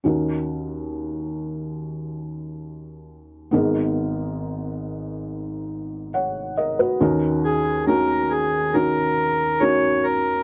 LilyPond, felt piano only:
<<
  \new Staff \with { instrumentName = "Felt piano" } { \time 4/4 \key ees \minor \tempo 4 = 69 << { r1 | r2. <des'' ges''>8 <bes' ees''>16 <ges' ces''>16~ | <ges' ces''>16 r2. r8. | } \\ { <des' ees' ges' bes'>1 | <ces' ees' aes' bes'>2.~ <ces' ees' aes' bes'>8 r8 | <des' ees' ges' bes'>4 <des' ees' ges' bes'>4 <des' ees' ges' bes'>4 <des' ees' ges' bes'>4 | } >> }
  \new Staff \with { instrumentName = "Felt piano" } { \clef bass \time 4/4 \key ees \minor <ees, ees>1 | <aes,, aes,>1 | <ees, ees>1 | }
>>